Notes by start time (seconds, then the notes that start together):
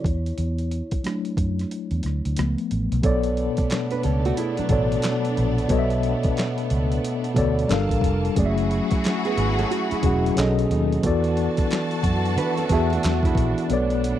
Already playing: E4 C#5
0.04 E2, kick, closed hi-hat
0.26 closed hi-hat
0.38 E2, closed hi-hat
0.58 closed hi-hat
0.71 closed hi-hat
0.91 muted fingered electric bass stroke, kick, closed hi-hat
1.04 F#3 A3 D4, cross-stick, closed hi-hat
1.25 closed hi-hat
1.37 F#2, kick, closed hi-hat
1.59 cross-stick, closed hi-hat
1.71 closed hi-hat
1.91 E2, closed hi-hat
2.03 D2, cross-stick, closed hi-hat
2.25 D2, closed hi-hat
2.36 C#2 F3 A3 B3, cross-stick, closed hi-hat
2.58 closed hi-hat
2.71 A1, closed hi-hat
2.92 B1, closed hi-hat
3.02 B1 B2 A3 B3 D4 A4 C#5 D5, kick, closed hi-hat
3.23 closed hi-hat
3.37 closed hi-hat
3.57 muted fingered electric bass stroke, kick, closed hi-hat
3.70 snare, clap, closed hi-hat
3.91 D4 B4, closed hi-hat
4.03 C#2 C#4 A4, closed hi-hat
4.25 A3 F#4, closed hi-hat
4.37 G#3 E4, closed hi-hat
4.57 F#3 D4, muted fingered electric bass stroke, closed hi-hat
4.69 A1 B2 B3 A4 C#5 D5, kick, closed hi-hat
4.92 closed hi-hat
5.02 snare, clap, closed hi-hat
5.25 closed hi-hat
5.37 A#1, closed hi-hat
5.58 closed hi-hat
5.68 B1 B2 B3 A4 C#5, kick, closed hi-hat
5.72 D#5
5.79 E5
5.90 closed hi-hat
6.03 closed hi-hat
6.23 muted fingered electric bass stroke, kick, closed hi-hat
6.37 snare, clap, closed hi-hat
6.58 closed hi-hat
6.70 C#2, closed hi-hat
6.92 closed hi-hat
7.04 closed hi-hat
7.24 closed hi-hat
7.35 D2 B2 B3 A4 C#5 D5, kick, closed hi-hat
7.59 closed hi-hat
7.68 G1 G3 A#3 D4 F4 A4 A#4 A5, snare, clap, closed hi-hat
7.72 F5
7.89 A1, kick, closed hi-hat
8.01 F1, kick, closed hi-hat
8.25 closed hi-hat
8.35 F#1 F#3 A3 C#4 E4 F#4 G#4 D5, kick, closed hi-hat
8.46 E5
8.58 closed hi-hat
8.71 closed hi-hat
8.91 muted fingered electric bass stroke, kick, closed hi-hat
9.04 snare, clap, closed hi-hat
9.25 B3 G#4, closed hi-hat
9.38 G#1, closed hi-hat
9.59 C#4 A4, closed hi-hat
9.71 A3 F#4, closed hi-hat
9.91 G#3 E4, muted fingered electric bass stroke, closed hi-hat
10.02 E1 F#3 C#4 F#4 G#4 F#5, kick, closed hi-hat
10.26 closed hi-hat
10.36 B1 B2 F#3 A3 B3 C#4 D#4 G#4 A4 D#5, snare, clap, closed hi-hat
10.59 closed hi-hat
10.71 D#2, closed hi-hat
10.92 closed hi-hat
11.03 E2 E3 B3 D4 F#4 A4 D5 A5, kick, closed hi-hat
11.24 closed hi-hat
11.37 closed hi-hat
11.57 muted fingered electric bass stroke, kick, closed hi-hat
11.71 snare, clap, closed hi-hat
11.91 closed hi-hat
12.03 F#2, kick, closed hi-hat
12.25 snare, closed hi-hat
12.37 E3 D4 B4, closed hi-hat
12.57 C#4 A4, closed hi-hat
12.69 E2 E3 B3 F#4 G#4 E5 A5, kick, snare, closed hi-hat
12.92 A3 F#4, closed hi-hat
13.03 E2, snare, clap, closed hi-hat
13.23 G#3 E4, kick, closed hi-hat
13.35 A#1, kick, closed hi-hat
13.58 closed hi-hat
13.69 B1 B2 A3 B3 A4 C#5, closed hi-hat
13.73 D5
13.90 closed hi-hat
14.04 closed hi-hat